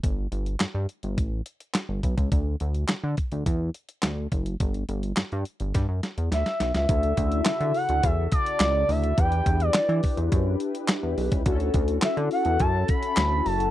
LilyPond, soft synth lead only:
\new Staff \with { instrumentName = "Soft synth lead" } { \time 4/4 \key d \major \tempo 4 = 105 r1 | r1 | r2. e''8. e''16~ | e''4. fis''8 e''8 d''4 e''8 |
g''8. d''4 r2 r16 | r4 e''8 fis''8 a''8 b''4 a''8 | }